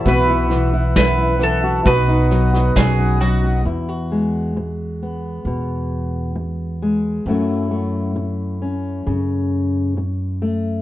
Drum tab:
SD |o-o-o-o-o-ooo-o-|----------------|----------------|
BD |o---o---o---o---|----------------|----------------|